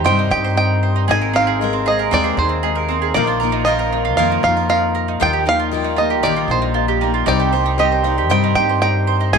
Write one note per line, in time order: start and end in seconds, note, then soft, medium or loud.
0.00 1.05 C2 medium
0.00 1.05 C3 medium
0.00 1.08 C3 medium
0.00 1.07 D#3 medium
0.00 0.05 G3 loud
0.00 1.07 G3 medium
0.00 0.05 C4 medium
0.00 0.05 D#4 medium
0.00 0.17 D#4 medium
0.00 3.12 D#4 medium
0.00 0.29 G4 medium
0.00 0.05 C5 medium
0.00 0.06 D#5 medium
0.00 1.11 G5 loud
0.04 0.30 G2 medium
0.04 0.31 C3 medium
0.04 0.37 G3 medium
0.04 0.32 G3 medium
0.04 0.37 C4 medium
0.04 0.32 C4 medium
0.04 0.37 D#4 medium
0.04 0.31 D#4 medium
0.04 0.29 G4 medium
0.04 0.43 C5 loud
0.04 0.37 C5 medium
0.04 0.37 D#5 medium
0.04 0.30 G5 loud
0.19 0.56 D#4 medium
0.31 1.05 G2 loud
0.31 1.09 C4 medium
0.31 1.10 D#4 medium
0.31 1.08 G4 medium
0.31 0.83 G4 medium
0.31 0.56 G5 loud
0.44 0.82 C5 medium
0.56 0.88 G3 medium
0.56 0.88 C4 medium
0.56 0.88 D#4 medium
0.56 0.95 D#4 medium
0.56 0.88 C5 medium
0.56 0.89 D#5 medium
0.56 1.10 G5 loud
0.83 1.09 C5 medium
0.96 1.07 D#4 medium
1.08 3.11 G#1 medium
1.08 2.13 G#1 loud
1.08 3.11 G#2 medium
1.08 3.13 C3 medium
1.08 1.40 G#3 loud
1.08 3.13 G#3 medium
1.08 1.35 G#3 medium
1.08 3.13 A#3 medium
1.08 1.40 C4 loud
1.08 1.35 C4 medium
1.08 1.41 D#4 medium
1.08 1.36 D#4 medium
1.08 1.46 G#4 loud
1.08 1.40 A#4 medium
1.08 1.34 A#4 medium
1.08 1.41 D#5 loud
1.08 1.35 G#5 loud
1.21 1.73 A#4 medium
1.33 1.72 C4 medium
1.33 1.62 D#4 medium
1.33 1.61 A#4 medium
1.33 1.87 F5 loud
1.38 1.61 C4 soft
1.47 1.85 G#4 medium
1.59 1.76 G#3 medium
1.59 2.11 G#3 medium
1.59 1.76 C4 medium
1.59 2.12 C4 medium
1.59 1.76 D#4 medium
1.59 2.13 D#4 medium
1.59 1.76 A#4 medium
1.59 1.76 D#5 medium
1.64 2.14 A#4 medium
1.73 2.10 C4 medium
1.85 2.01 G#3 medium
1.85 2.02 C4 medium
1.85 2.02 D#4 medium
1.85 2.23 G#4 medium
1.85 2.02 A#4 medium
1.85 2.02 C5 medium
1.85 2.13 D#5 loud
1.99 2.51 A#4 medium
2.11 2.36 D#2 loud
2.11 2.43 G#3 medium
2.11 2.38 G#3 medium
2.11 2.48 C4 loud
2.11 2.43 C4 medium
2.11 2.38 C4 loud
2.11 2.44 D#4 medium
2.11 2.38 D#4 medium
2.11 2.44 A#4 medium
2.11 2.36 A#4 loud
2.11 2.38 D5 loud
2.11 2.44 D#5 medium
2.24 2.62 G#4 medium
2.37 3.11 D#2 loud
2.37 2.90 C4 soft
2.37 2.90 D#4 medium
2.37 2.89 A#4 medium
2.37 2.86 C5 medium
2.49 2.87 C4 medium
2.62 2.95 G#3 medium
2.62 2.95 C4 medium
2.62 2.95 D#4 medium
2.62 3.01 G#4 medium
2.62 2.95 A#4 medium
2.62 2.95 D#5 medium
2.75 3.15 A#4 medium
2.89 3.15 C4 medium
2.89 3.16 C4 soft
2.89 3.16 D#4 soft
2.89 3.15 A#4 medium
3.02 3.14 G#4 medium
3.14 4.18 A#1 loud
3.14 5.17 A#1 medium
3.14 3.41 A#2 medium
3.14 5.17 A#2 medium
3.14 3.41 D#3 medium
3.14 5.20 D#3 medium
3.14 3.47 F3 loud
3.14 5.20 F3 medium
3.14 3.41 F3 medium
3.14 3.47 A#3 loud
3.14 3.42 A#3 loud
3.14 7.24 A#3 medium
3.14 3.27 D#4 loud
3.14 3.47 D#4 medium
3.14 3.42 D#4 medium
3.14 7.24 F4 loud
3.14 3.47 A#4 loud
3.14 3.40 A#4 loud
3.14 3.68 D5 medium
3.14 3.47 F5 loud
3.27 3.65 F4 medium
3.40 3.66 A#3 medium
3.40 3.67 D#4 medium
3.40 3.78 A#4 medium
3.40 3.67 A#4 medium
3.45 3.65 F3 medium
3.52 3.91 D#4 medium
3.65 4.17 F3 medium
3.65 3.82 F3 medium
3.65 3.82 A#3 medium
3.65 4.18 A#3 medium
3.65 3.82 D#4 medium
3.65 4.18 D#4 medium
3.65 4.04 F4 loud
3.65 3.83 A#4 medium
3.65 4.17 D#5 medium
3.65 3.83 D#5 medium
3.69 4.19 A#4 medium
3.79 4.17 A#4 medium
3.92 4.08 F3 medium
3.92 4.09 A#3 medium
3.92 4.30 D#4 medium
3.92 4.09 D#4 medium
3.92 4.09 A#4 medium
3.92 4.09 D#5 medium
4.05 4.43 F4 medium
4.17 4.42 F2 loud
4.17 4.43 A#2 medium
4.17 4.44 D#3 medium
4.17 4.49 F3 medium
4.17 4.44 F3 medium
4.17 4.49 A#3 medium
4.17 4.44 A#3 medium
4.17 4.49 D#4 medium
4.17 4.43 D#4 medium
4.17 4.50 A#4 medium
4.17 4.55 A#4 loud
4.17 4.42 A#4 medium
4.17 4.50 D#5 medium
4.17 4.43 F5 loud
4.32 4.68 D#4 medium
4.43 5.17 F2 loud
4.43 5.19 F3 soft
4.43 5.19 A#3 medium
4.43 5.21 D#4 medium
4.43 4.94 F4 medium
4.43 5.20 A#4 medium
4.43 4.69 F5 loud
4.57 4.93 A#4 medium
4.69 5.01 F3 medium
4.69 5.01 A#3 medium
4.69 5.01 D#4 medium
4.69 5.07 D#4 loud
4.69 5.01 A#4 medium
4.69 5.01 D#5 medium
4.69 5.22 F5 loud
4.95 5.21 A#4 medium
5.08 5.21 D#4 medium
5.20 7.23 D#2 medium
5.20 6.23 D#2 loud
5.20 5.46 D#3 medium
5.20 9.29 D#3 medium
5.20 5.52 F3 loud
5.20 5.46 F3 medium
5.20 9.29 G3 medium
5.20 5.52 A#3 medium
5.20 5.47 A#3 medium
5.20 5.52 D#4 medium
5.20 5.46 D#4 loud
5.20 5.33 F4 loud
5.20 5.52 G4 medium
5.20 5.44 G4 medium
5.20 5.53 D#5 loud
5.20 5.48 G5 loud
5.33 5.59 G4 medium
5.46 5.71 A#3 soft
5.46 5.83 D#4 medium
5.46 5.72 D#4 medium
5.46 5.72 G4 medium
5.46 5.96 F5 loud
5.59 5.95 F4 medium
5.71 5.88 F3 medium
5.71 5.98 F3 medium
5.71 5.88 A#3 medium
5.71 5.98 A#3 medium
5.71 5.88 D#4 medium
5.71 5.98 D#4 medium
5.71 5.88 G4 medium
5.71 5.96 G4 medium
5.71 5.88 D#5 medium
5.84 6.22 D#4 medium
5.96 6.13 F3 medium
5.96 6.14 A#3 medium
5.96 6.24 A#3 soft
5.96 6.14 D#4 medium
5.96 6.24 D#4 soft
5.96 6.10 F4 medium
5.96 6.24 G4 soft
5.96 6.14 G4 medium
5.96 6.25 D#5 medium
6.10 6.36 G4 medium
6.22 6.47 A#1 medium
6.22 6.50 D#3 medium
6.22 6.55 F3 medium
6.22 6.50 F3 medium
6.22 6.55 A#3 medium
6.22 6.50 A#3 medium
6.22 6.61 D#4 loud
6.22 6.55 D#4 medium
6.22 6.50 D#4 medium
6.22 6.55 G4 medium
6.22 6.48 G4 medium
6.22 6.50 D5 medium
6.22 6.55 D#5 medium
6.36 6.73 F4 medium
6.48 7.22 A#1 loud
6.48 7.02 D#4 soft
6.48 7.00 G4 medium
6.48 6.98 C5 medium
6.52 7.02 A#3 medium
6.62 7.00 D#4 medium
6.74 7.06 F3 medium
6.74 7.06 A#3 medium
6.74 7.07 D#4 medium
6.74 6.88 F4 medium
6.74 7.07 G4 medium
6.74 7.07 D#5 medium
6.88 7.13 G4 medium
7.01 7.28 A#3 soft
7.01 7.25 D#4 medium
7.01 7.27 D#4 medium
7.01 7.27 G4 medium
7.14 7.27 F4 medium
7.26 8.30 C2 loud
7.26 9.29 C2 medium
7.26 7.53 C3 medium
7.26 9.29 C3 medium
7.26 7.58 G3 loud
7.26 7.53 G3 medium
7.26 7.59 C4 medium
7.26 9.31 C4 medium
7.26 7.53 C4 medium
7.26 7.65 D#4 loud
7.26 7.59 D#4 medium
7.26 7.54 D#4 medium
7.26 9.31 G4 loud
7.26 7.52 G4 medium
7.26 7.59 C5 medium
7.26 7.75 D5 medium
7.26 7.59 G5 loud
7.40 7.78 G4 medium
7.53 7.78 C4 soft
7.53 7.79 D#4 medium
7.53 7.79 G4 medium
7.53 7.91 C5 medium
7.66 8.03 D#4 medium
7.77 7.94 G3 medium
7.77 8.04 G3 medium
7.77 7.94 C4 medium
7.77 8.04 C4 medium
7.77 7.94 D#4 medium
7.77 8.04 D#4 medium
7.77 8.17 G4 loud
7.77 8.03 G4 medium
7.77 7.94 C5 medium
7.77 7.94 D#5 medium
7.77 8.31 D#5 medium
7.92 8.29 C5 medium
8.03 8.19 G3 medium
8.03 8.19 C4 medium
8.03 8.29 C4 soft
8.03 8.19 D#4 medium
8.03 8.42 D#4 medium
8.03 8.30 D#4 soft
8.03 8.30 G4 medium
8.03 8.20 C5 medium
8.03 8.20 F5 medium
8.18 8.55 G4 medium
8.29 8.54 G2 loud
8.29 8.55 C3 medium
8.29 8.61 G3 medium
8.29 8.56 G3 medium
8.29 8.61 C4 medium
8.29 8.56 C4 medium
8.29 8.61 D#4 medium
8.29 8.56 D#4 medium
8.29 8.54 G4 medium
8.29 8.61 C5 medium
8.29 8.68 C5 medium
8.29 8.62 D#5 medium
8.29 8.54 G5 loud
8.44 8.81 D#4 medium
8.55 9.29 G2 loud
8.55 9.34 D#4 medium
8.55 9.33 G4 medium
8.55 9.08 G4 medium
8.55 8.81 G5 loud
8.59 9.33 C4 soft
8.69 9.06 C5 medium
8.81 9.13 G3 medium
8.81 9.13 C4 medium
8.81 9.13 D#4 medium
8.81 9.19 D#4 medium
8.81 9.13 C5 medium
8.81 9.13 D#5 medium
8.81 9.33 G5 loud
9.07 9.33 C5 medium
9.21 9.33 D#4 medium
9.33 9.38 G#1 medium
9.33 9.38 G#2 medium
9.33 9.38 C3 medium
9.33 9.38 G#3 medium
9.33 9.38 G#3 loud
9.33 9.38 G#3 medium
9.33 9.38 A#3 medium
9.33 9.38 C4 medium
9.33 9.38 D#4 medium
9.33 9.38 D#4 loud
9.33 9.38 D#4 medium
9.33 9.38 G#4 loud
9.33 9.38 A#4 medium
9.33 9.38 D#5 loud
9.33 9.38 G#5 loud